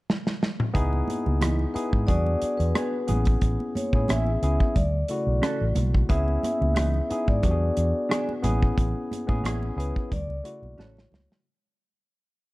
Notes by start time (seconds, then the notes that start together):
0.10 snare
0.27 snare
0.43 snare
0.60 mid tom
0.74 C#2 B3 D#4 E4 G#4, kick, closed hi-hat
0.93 muted conga
1.08 closed hi-hat, high conga
1.26 C#2, high conga
1.41 E3 B3 D#4, cross-stick, closed hi-hat, high conga
1.59 muted conga
1.74 B3 D#4 E4 G#4 B4, muted fingered electric bass stroke, closed hi-hat
1.93 G#2, kick
2.07 E2 B3 D4 F#4 G#4 D5, kick, closed hi-hat, muted conga, low conga
2.26 muted conga
2.42 muted fingered electric bass stroke, closed hi-hat
2.57 E2 B4, closed hi-hat
2.75 B3 D4 G#4, cross-stick, closed hi-hat, muted conga
3.07 A1 B3 C#4 E4 G#4, closed hi-hat, high conga, low conga
3.25 kick, closed hi-hat
3.41 A1, kick, closed hi-hat
3.60 muted conga
3.75 C#5, muted fingered electric bass stroke, closed hi-hat, high conga
3.93 A2 B3 C#4 E4 G#4, kick, high conga
4.08 A1 C#4 E4 G#4 E5, cross-stick, closed hi-hat, muted conga, high conga
4.27 muted conga
4.42 C#2 B3 C#4 E4 G#4, closed hi-hat
4.60 kick
4.76 D2 D5, kick, closed hi-hat, muted conga, low conga
5.08 C#3 A3 E4 F#4, closed hi-hat
5.27 B1
5.42 C#4 F#4 A4, cross-stick, closed hi-hat
5.61 A1
5.75 B1, closed hi-hat, high conga, low conga
5.95 kick
6.09 C#2 B3 C#4 E4 G#4 E5, kick, closed hi-hat, muted conga
6.28 muted conga
6.43 cross-stick, closed hi-hat, high conga
6.61 C#2, high conga
6.75 E3 B3 D#4, cross-stick, closed hi-hat, muted conga, high conga
6.94 muted conga
7.10 B3 D#4 E4 G#4, muted fingered electric bass stroke, closed hi-hat
7.28 G#2 D5, kick
7.43 E2 B3 D4 F#4 G4, kick, closed hi-hat, muted conga, low conga
7.51 G#4
7.77 E2, closed hi-hat
8.09 B3 D4 G#4, cross-stick, closed hi-hat
8.29 muted conga
8.42 A1 B3 C#4 E4 G#4, closed hi-hat, high conga, low conga
8.63 kick
8.78 A1, kick, closed hi-hat, muted conga
9.11 muted fingered electric bass stroke, closed hi-hat, high conga
9.27 A2 B3 C#4 E4 G#4, kick, high conga
9.42 A1 C#4 E4 G#4, cross-stick, closed hi-hat, muted conga, high conga
9.63 muted conga
9.76 C#2 B3 C#4 E4 G#4 B4, closed hi-hat
9.96 kick
10.12 D2 D5, kick, closed hi-hat, muted conga, low conga
10.28 C#2, muted conga
10.43 C#3 A3 E4 F#4, closed hi-hat
10.62 B1, high conga
10.78 A1 C#4 F#4 A4 C#5, snare, muted conga
10.97 snare, muted conga
11.12 C#2, snare, high conga, low conga
11.32 snare